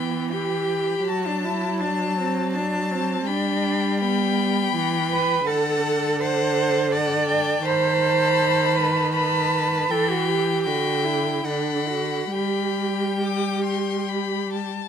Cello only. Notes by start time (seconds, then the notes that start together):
Already playing: B3
0.31 G4
1.08 F#4
1.27 D4
1.45 E4
1.80 D4
2.18 C4
2.54 D4
2.92 C4
3.28 D4
4.01 B3
5.11 B4
5.47 A4
6.20 C5
6.92 D5
7.65 C5
8.76 B4
9.15 B4
9.91 A4
10.10 F#4
10.28 G4
10.66 F#4
11.05 E4
11.46 D4
11.89 F#4
12.32 G4